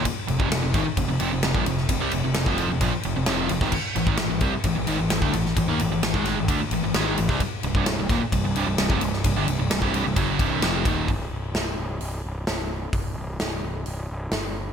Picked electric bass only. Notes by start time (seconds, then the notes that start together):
0.29 F1
0.40 F1
0.52 F1
0.64 F1
0.74 G#1
0.86 muted picked electric bass stroke
0.97 F1
1.09 F1
1.21 F1
1.32 F1
1.43 F1
1.54 A#1
1.66 F1
1.89 F1
2.00 C2
2.12 F1
2.24 F1
2.36 F1
2.46 F1
2.70 F1
2.81 A#1
2.94 muted picked electric bass stroke
3.05 F1
3.16 F1
3.28 F1
3.50 F1
3.61 G#1
3.96 G#1
4.07 G#1
4.19 G#1
4.30 G#1
4.41 C2
4.54 muted picked electric bass stroke
4.64 G#1
4.77 G#1
4.88 G#1
4.99 G#1
5.11 G#1
5.22 D2
5.33 G#1
5.57 G#1
5.68 D#2
5.80 G#1
5.91 G#1
6.03 G#1
6.14 G#1
6.37 G#1
6.48 D2
6.60 muted picked electric bass stroke
6.71 G#1
6.83 G#1
6.94 G#1
7.18 G#1
7.29 C2
7.64 C1
7.75 C1
7.87 C1
7.99 C1
8.09 D#1
8.21 muted picked electric bass stroke
8.32 C1
8.44 C1
8.55 C1
8.66 C1
8.78 C1
8.90 F1
9.01 C1
9.24 C1
9.36 G1
9.47 C1
9.59 C1
9.71 C1
9.82 C1
10.05 C1
10.16 F#1
10.39 C1
10.62 F1
10.85 D#1
11.08 C1
11.31 C1
11.54 C1
11.77 C1
12.01 C1
12.24 C1
12.47 C1
12.93 C1
13.16 C1
13.40 C1
13.63 C1
13.86 C1
14.09 C1
14.31 G1